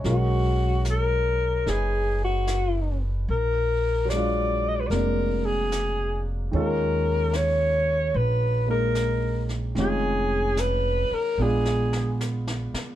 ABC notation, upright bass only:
X:1
M:4/4
L:1/8
Q:"Swing" 1/4=74
K:Ebm
V:1 name="Upright bass" clef=bass
=B,,,4 ^F,,,4 | B,,,4 F,,,4 | E,,4 B,,,4 | F,,,3 z B,,,3 z |]